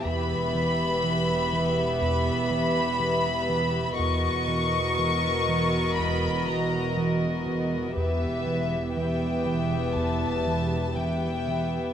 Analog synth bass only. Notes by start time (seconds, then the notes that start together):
0.05 E2
0.55 E3
1.04 E3
1.53 E3
2.02 E2
2.51 E3
3.00 E3
3.49 E3
3.99 E2
4.48 E3
4.99 E3
5.49 E3
5.99 E2
6.48 E3
6.97 E3
7.47 E3
7.97 E2
8.46 E3
8.97 E3
9.46 E3
9.96 E2
10.47 E3
10.97 E3
11.48 E3